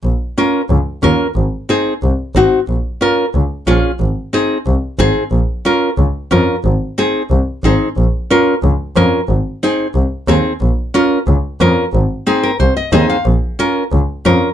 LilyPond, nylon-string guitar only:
\new Staff \with { instrumentName = "Nylon-string guitar" } { \time 4/4 \key bes \minor \tempo 4 = 182 r4 <des' f' bes'>8 r4. <des' f' bes'>8 r8 | r4 <c' ees' aes'>8 r4. <c' ees' ges'>8 r8 | r4 <des' f' bes'>8 r4. <des' f' aes'>8 r8 | r4 <c' ees' aes'>8 r4. <c' ees' aes'>8 r8 |
r4 <des' f' bes'>8 r4. <des' f' bes'>8 r8 | r4 <c' ees' aes'>8 r4. <c' ees' aes'>8 r8 | r4 <des' f' bes'>8 r4. <des' f' bes'>8 r8 | r4 <c' ees' aes'>8 r4. <c' ees' aes'>8 r8 |
r4 <des' f' bes'>8 r4. <des' f' bes'>8 r8 | r4 <c' ees' aes'>8 bes'8 c''8 ees''8 <c' ees' aes' ees''>8 f''8 | r4 <des' f' bes'>8 r4. <des' f' bes'>8 r8 | }